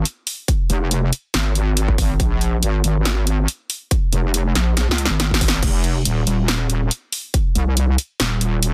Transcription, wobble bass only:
0, 0, Header, 1, 2, 480
1, 0, Start_track
1, 0, Tempo, 428571
1, 541, Time_signature, 4, 2, 24, 8
1, 9784, End_track
2, 0, Start_track
2, 0, Title_t, "Wobble bass"
2, 0, Program_c, 0, 39
2, 780, Note_on_c, 0, 29, 96
2, 1243, Note_off_c, 0, 29, 0
2, 1501, Note_on_c, 0, 32, 96
2, 2443, Note_off_c, 0, 32, 0
2, 2461, Note_on_c, 0, 34, 98
2, 2923, Note_off_c, 0, 34, 0
2, 2942, Note_on_c, 0, 32, 97
2, 3163, Note_off_c, 0, 32, 0
2, 3181, Note_on_c, 0, 32, 102
2, 3883, Note_off_c, 0, 32, 0
2, 4620, Note_on_c, 0, 29, 97
2, 5083, Note_off_c, 0, 29, 0
2, 5100, Note_on_c, 0, 34, 98
2, 5449, Note_off_c, 0, 34, 0
2, 5470, Note_on_c, 0, 37, 100
2, 5690, Note_off_c, 0, 37, 0
2, 5710, Note_on_c, 0, 32, 94
2, 6283, Note_off_c, 0, 32, 0
2, 6301, Note_on_c, 0, 29, 97
2, 6763, Note_off_c, 0, 29, 0
2, 6780, Note_on_c, 0, 27, 97
2, 7003, Note_off_c, 0, 27, 0
2, 7020, Note_on_c, 0, 27, 99
2, 7723, Note_off_c, 0, 27, 0
2, 8460, Note_on_c, 0, 36, 96
2, 8923, Note_off_c, 0, 36, 0
2, 9180, Note_on_c, 0, 27, 99
2, 9784, Note_off_c, 0, 27, 0
2, 9784, End_track
0, 0, End_of_file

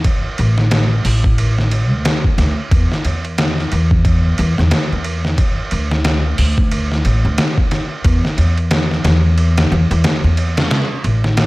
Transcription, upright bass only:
0, 0, Header, 1, 2, 480
1, 0, Start_track
1, 0, Tempo, 666667
1, 32, Time_signature, 4, 2, 24, 8
1, 8255, End_track
2, 0, Start_track
2, 0, Title_t, "Upright bass"
2, 0, Program_c, 0, 32
2, 281, Note_on_c, 0, 33, 82
2, 738, Note_off_c, 0, 33, 0
2, 756, Note_on_c, 0, 33, 81
2, 1377, Note_off_c, 0, 33, 0
2, 1377, Note_on_c, 0, 38, 92
2, 1462, Note_off_c, 0, 38, 0
2, 1712, Note_on_c, 0, 38, 92
2, 1837, Note_off_c, 0, 38, 0
2, 1955, Note_on_c, 0, 40, 90
2, 2078, Note_off_c, 0, 40, 0
2, 2196, Note_on_c, 0, 40, 75
2, 2655, Note_off_c, 0, 40, 0
2, 2680, Note_on_c, 0, 40, 82
2, 3137, Note_off_c, 0, 40, 0
2, 3161, Note_on_c, 0, 40, 91
2, 3281, Note_off_c, 0, 40, 0
2, 3304, Note_on_c, 0, 40, 84
2, 3386, Note_off_c, 0, 40, 0
2, 3545, Note_on_c, 0, 40, 79
2, 3859, Note_off_c, 0, 40, 0
2, 4118, Note_on_c, 0, 38, 79
2, 4576, Note_off_c, 0, 38, 0
2, 4597, Note_on_c, 0, 38, 83
2, 5056, Note_off_c, 0, 38, 0
2, 5077, Note_on_c, 0, 33, 85
2, 5199, Note_off_c, 0, 33, 0
2, 5218, Note_on_c, 0, 38, 81
2, 5302, Note_off_c, 0, 38, 0
2, 5793, Note_on_c, 0, 40, 95
2, 5918, Note_off_c, 0, 40, 0
2, 6034, Note_on_c, 0, 40, 79
2, 6494, Note_off_c, 0, 40, 0
2, 6513, Note_on_c, 0, 40, 87
2, 6974, Note_off_c, 0, 40, 0
2, 6996, Note_on_c, 0, 40, 98
2, 7119, Note_off_c, 0, 40, 0
2, 7134, Note_on_c, 0, 40, 93
2, 7220, Note_off_c, 0, 40, 0
2, 7373, Note_on_c, 0, 40, 76
2, 7693, Note_off_c, 0, 40, 0
2, 7952, Note_on_c, 0, 33, 83
2, 8255, Note_off_c, 0, 33, 0
2, 8255, End_track
0, 0, End_of_file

